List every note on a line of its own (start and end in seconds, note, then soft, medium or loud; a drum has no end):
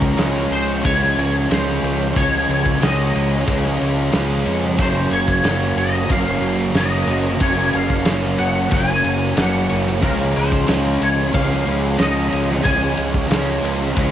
0.00 0.15 C#2 medium
0.00 0.16 C#3 medium
0.00 0.17 F3 medium
0.00 0.18 G#3 medium
0.00 0.19 C#4 medium
0.00 0.54 A#4 medium
0.00 kick medium
0.16 0.48 C#2 medium
0.16 0.80 C#3 medium
0.16 0.82 F3 medium
0.16 0.83 G#3 medium
0.16 0.84 C#4 medium
0.16 snare loud
0.16 ride medium
0.51 0.81 C#2 medium
0.51 0.84 C5 loud
0.51 ride medium
0.82 1.15 C#2 medium
0.82 1.47 C#3 loud
0.82 1.48 F3 loud
0.82 1.49 G#3 loud
0.82 1.51 C#4 loud
0.82 1.51 C#5 medium
0.82 kick loud
0.82 ride medium
1.04 snare soft
1.15 1.47 C#2 medium
1.15 1.50 G#3 medium
1.15 1.51 C#4 medium
1.15 ride medium
1.48 1.80 C#2 medium
1.48 2.12 C#3 medium
1.48 2.14 F3 medium
1.48 2.15 G#3 medium
1.48 2.17 C#4 medium
1.48 2.17 C5 medium
1.48 snare medium
1.48 ride medium
1.83 2.13 C#2 medium
1.83 ride medium
2.13 2.46 C#2 medium
2.13 2.77 C#3 medium
2.13 2.78 F3 medium
2.13 2.80 G#3 loud
2.13 2.82 C#4 medium
2.13 2.83 C#5 loud
2.13 kick loud
2.13 ride medium
2.49 2.79 C#2 medium
2.49 ride medium
2.66 kick medium
2.78 3.12 C#2 medium
2.78 3.44 C#3 medium
2.78 3.45 F3 medium
2.78 3.46 G#3 medium
2.78 3.48 C#4 medium
2.78 ride medium
2.83 3.77 D#5 loud
2.83 snare loud
3.16 3.45 C#2 medium
3.16 ride medium
3.45 3.78 C#2 medium
3.45 4.09 C#3 medium
3.45 4.11 F3 medium
3.45 4.11 G#3 loud
3.45 4.14 C#4 loud
3.45 kick loud
3.45 ride medium
3.66 snare soft
3.79 4.11 C#2 medium
3.79 4.12 G#3 medium
3.79 4.13 C#4 medium
3.79 ride medium
4.10 4.44 C#2 medium
4.10 4.75 C#3 medium
4.10 4.76 F3 medium
4.10 4.76 G#3 medium
4.10 4.79 C#4 medium
4.10 snare loud
4.10 ride medium
4.46 4.76 F2 medium
4.46 ride medium
4.76 5.09 F#1 medium
4.76 6.07 F#2 medium
4.76 5.41 C#3 loud
4.76 5.43 F#3 medium
4.76 5.44 A#3 medium
4.76 5.45 C#4 loud
4.76 kick loud
4.76 ride medium
4.81 5.12 C5 medium
5.11 5.42 F#1 medium
5.11 5.77 C#5 medium
5.11 ride medium
5.28 kick medium
5.42 5.74 F#1 medium
5.42 5.76 F#2 medium
5.42 6.09 F#2 medium
5.42 6.08 C#3 medium
5.42 6.08 F#3 medium
5.42 6.10 A#3 medium
5.42 6.11 C#4 medium
5.42 snare loud
5.42 ride medium
5.76 6.07 F#1 medium
5.76 6.08 F#2 medium
5.76 6.08 C#3 medium
5.76 6.09 F#3 medium
5.76 6.11 D#5 medium
5.76 ride medium
6.08 6.40 F#1 medium
6.08 7.07 F#2 loud
6.08 6.73 C#3 medium
6.08 6.74 F#3 loud
6.08 6.75 A#3 loud
6.08 6.77 C#4 medium
6.08 6.76 F5 medium
6.08 kick loud
6.08 ride medium
6.40 6.71 F#1 medium
6.40 6.76 F#3 medium
6.40 ride medium
6.44 6.74 C#3 medium
6.74 7.05 F#1 medium
6.74 7.38 F#2 medium
6.74 7.08 F#2 medium
6.74 7.39 C#3 medium
6.74 7.40 F#3 medium
6.74 7.41 A#3 medium
6.74 7.42 D#5 medium
6.74 snare medium
6.74 ride medium
6.78 7.42 C#4 medium
7.07 7.38 F#1 medium
7.07 7.41 F#2 medium
7.07 7.41 C#3 medium
7.07 7.42 F#3 medium
7.07 ride medium
7.40 7.71 F#1 medium
7.40 8.39 F#2 medium
7.40 8.04 C#3 medium
7.40 8.06 F#3 medium
7.40 8.07 A#3 medium
7.40 8.08 C#4 medium
7.40 7.75 C#5 medium
7.40 kick medium
7.40 ride medium
7.73 8.04 F#1 medium
7.73 8.38 F5 medium
7.73 ride medium
7.90 kick medium
8.05 8.37 F#1 medium
8.05 8.69 F#2 medium
8.05 8.37 F#2 medium
8.05 8.70 C#3 medium
8.05 8.71 F#3 medium
8.05 8.72 A#3 medium
8.05 8.73 C#4 medium
8.05 snare loud
8.05 ride medium
8.38 8.70 F#1 medium
8.38 8.69 F#2 medium
8.38 8.70 C#3 medium
8.38 8.71 F#3 loud
8.38 8.73 F#5 loud
8.38 ride medium
8.71 9.02 F#1 medium
8.71 9.70 F#2 loud
8.71 9.34 C#3 medium
8.71 9.36 F#3 loud
8.71 9.37 A#3 loud
8.71 9.38 C#4 loud
8.71 9.38 G#5 loud
8.71 kick loud
8.71 ride medium
9.03 9.35 F#1 medium
9.03 9.37 C#3 medium
9.03 9.38 F#3 medium
9.03 ride medium
9.35 9.68 F#1 medium
9.35 9.68 F#2 medium
9.35 10.01 F#2 medium
9.35 9.99 C#3 medium
9.35 10.01 F#3 medium
9.35 10.01 A#3 medium
9.35 10.04 C#4 medium
9.35 10.06 F#5 medium
9.35 snare loud
9.35 ride medium
9.69 10.02 F#1 medium
9.69 10.01 F#2 medium
9.69 10.00 C#3 medium
9.69 10.01 F#3 loud
9.69 ride medium
9.87 snare soft
10.00 10.33 C#2 medium
10.00 10.65 C#3 medium
10.00 10.66 F3 medium
10.00 10.67 G#3 loud
10.00 10.68 C#4 medium
10.00 10.36 A#4 medium
10.00 kick loud
10.00 ride medium
10.36 10.67 C#2 medium
10.36 11.03 C5 medium
10.36 ride medium
10.52 kick medium
10.65 10.99 C#2 medium
10.65 11.30 C#3 medium
10.65 11.32 F3 medium
10.65 11.33 G#3 medium
10.65 11.34 C#4 medium
10.65 snare loud
10.65 ride loud
11.01 11.32 C#2 medium
11.01 11.31 C#3 medium
11.01 11.33 G#3 medium
11.01 11.33 C#4 loud
11.01 11.36 C#5 medium
11.01 ride medium
11.31 11.65 C#2 medium
11.31 11.96 C#3 loud
11.31 11.96 F3 loud
11.31 11.99 G#3 loud
11.31 12.00 C#4 loud
11.31 11.98 F5 medium
11.31 kick loud
11.31 ride medium
11.52 snare soft
11.66 11.97 C#2 medium
11.66 11.99 G#3 medium
11.66 12.01 C#4 medium
11.66 ride medium
11.97 12.30 C#2 medium
11.97 12.61 C#3 medium
11.97 12.62 F3 medium
11.97 12.62 G#3 medium
11.97 12.64 C#4 medium
11.97 12.63 D#5 medium
11.97 snare medium
11.97 ride medium
12.30 12.63 C#2 medium
12.30 12.63 C#3 medium
12.30 12.63 G#3 medium
12.30 12.64 C#4 medium
12.30 ride medium
12.51 snare soft
12.62 12.95 C#2 medium
12.62 13.27 C#3 medium
12.62 13.28 F3 medium
12.62 13.29 G#3 loud
12.62 13.30 C#4 loud
12.62 14.11 G#5 medium
12.62 kick loud
12.62 ride medium
12.97 13.28 C#2 medium
12.97 ride medium
13.14 kick medium
13.28 13.61 C#2 medium
13.28 13.91 C#3 medium
13.28 13.93 F3 medium
13.28 13.94 G#3 medium
13.28 13.95 C#4 medium
13.28 snare loud
13.28 ride medium
13.63 13.93 C#2 medium
13.63 13.95 C#3 medium
13.63 13.96 G#3 loud
13.63 13.96 C#4 loud
13.63 ride medium
13.92 14.11 C#3 loud
13.92 14.11 F3 medium
13.92 14.11 G#3 loud
13.92 14.11 C#4 loud
13.96 14.11 C#2 medium
13.96 14.11 C#3 medium
13.96 kick loud
13.96 ride medium